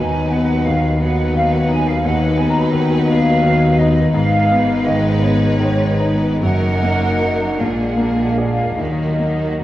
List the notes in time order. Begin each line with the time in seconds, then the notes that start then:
Already playing: D#2 D#3 F#3 B3 D#4 B4 G#5
0.30 B3 F#5
0.67 D#3 F5
1.00 F#3 B3 D#4 B4 F#5
1.34 D#3 F5
1.52 F#5
1.69 D#4 G#5
1.88 F5
2.02 D#2 F#3 D#4 B4 F#5
2.07 B3 D#4
2.37 B3 G#5
2.49 A#5
2.60 B5
2.70 D#3 A#5
2.78 F#5
2.88 G#5
2.97 F#5
3.09 B3 F5
3.43 D#3
3.77 D#4 D#5
4.12 G#1 G#2 G#3 B3 D#4 B4 F5
4.51 B3
4.85 D#3 D#5
5.20 B3 C#5
5.59 D#3
6.00 D#4
6.41 F#1 F#2 A#3 D#4 A#4 F#5
6.83 A#3
7.22 D#4 D#5
7.57 A#1 A#2 G#3 A#3 D4 G#4 F5
7.67 F#5
7.75 F5
7.84 F#5
7.93 A#3 F5
8.00 F#5
8.09 F5
8.19 F#5
8.29 F5
8.37 G#4 D5 F#5
8.46 F5
8.78 D#2 D#3 F#3 A#3 D#4 F#4 D#5
9.19 A#3
9.61 A#2